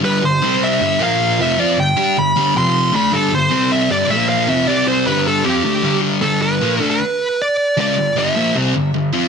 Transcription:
<<
  \new Staff \with { instrumentName = "Lead electric guitar" } { \time 4/4 \key c \major \tempo 4 = 155 b'8 c''4 e''4 f''4 e''8 | d''8 g''4 b''4 c'''4 b''8 | a'8 c''4 e''8 d''8 e''8 f''8 e''8 | d''8 c''8 b'8 a'8 g'4. r8 |
a'8 b'4~ b'16 b'4~ b'16 d''4 | d''4 e''4 r2 | }
  \new Staff \with { instrumentName = "Distorted electric guitar" } { \clef bass \time 4/4 \key c \major <g, d g>8 <g, d>8 <c g c'>4 <g, d g>8 <bes, f bes>4 <f, c f>8 | <f c' f'>8 <g, d>8 <g d' g'>8 <g, d>8 <g, d g>8 <f, c f>4 <d a d'>8 | <g, d g>8 <g, d>8 <c g c'>4 <g, d g>8 <bes, f bes>4 <f, c f>8 | <c g c'>4 <g, d g>4 <f c' f'>8 <d a d'>8 <g, d g>4 |
<g, d g>4 <bes, f bes>8 <d a d'>8 r2 | <cis aes cis'>8 <g, d>8 <g, d g>8 <bes, f bes>8 <c g c'>8 <g, d>8 <g, d>8 <f c' f'>8 | }
>>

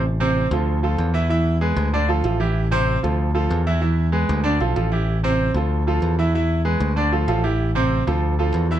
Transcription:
<<
  \new Staff \with { instrumentName = "Grand piano" } { \time 4/4 \key a \minor \tempo 4 = 191 r8 <c c' c''>4 <f f' a'>4 <f f' a'>4 <e e' e''>8 | <e e' e''>4 <gis gis' b'>4 <d d' d''>8 <f f' a'>8 <f f' a'>8 <e e' g'>8~ | <e e' g'>8 <c c' c''>4 <f f' a'>4 <f f' a'>4 <e e' e''>8 | <e e' e''>4 <gis gis' b'>4 <d d' d''>8 <f f' a'>8 <f f' a'>8 <e e' g'>8~ |
<e e' g'>8 <c c' c''>4 <f f' a'>4 <f f' a'>4 <e e' e''>8 | <e e' e''>4 <gis gis' b'>4 <d d' d''>8 <f f' a'>8 <f f' a'>8 <e e' g'>8~ | <e e' g'>8 <c c' c''>4 <f f' a'>4 <f f' a'>4 <e e' e''>8 | }
  \new Staff \with { instrumentName = "Picked electric bass" } { \clef bass \time 4/4 \key a \minor a,,4. d,4. e,4~ | e,4. d,4. a,,4~ | a,,4. d,4. e,4~ | e,4. d,4 b,,8 a,,4~ |
a,,4. d,4. e,4~ | e,4. d,4. a,,4~ | a,,4. d,4. e,4 | }
>>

